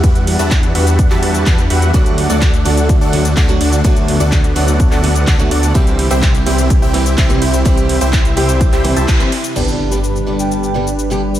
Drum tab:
CC |----------------|----------------|----------------|----------------|
RD |x-x-x-x-x-x-x-x-|x-x-x-x-x-x-x-x-|x-x-x-x-x-x-x-x-|x-x-x-x-x-x-x-x-|
HH |xxoxxxoxx-oxxxox|xxoxxxoxx-oxxxox|xxoxxxoxx-oxxxox|xxoxxxoxx-oxxxox|
SH |xx-xxx-xxx-xxx-x|xx-xxx-xxx-xxx-x|xx-xxx-xxx-xxx-x|xx-xxx-xxx-xxx-x|
CP |----x----x--x---|----x-------x---|----x----x--x---|----x-------x---|
BD |o---o---o---o---|o---o---o---o---|o---o---o---o---|o---o---o---o---|

CC |----------------|x---------------|
RD |x-x-x-x-x-x-x-x-|----------------|
HH |xxoxxxoxxxoxxxox|----------------|
SH |xx-xxx-xxx-xxx-x|xx-xxx-xxx-xxx-x|
CP |----x----x--x---|----------------|
BD |o---o---o---o---|----------------|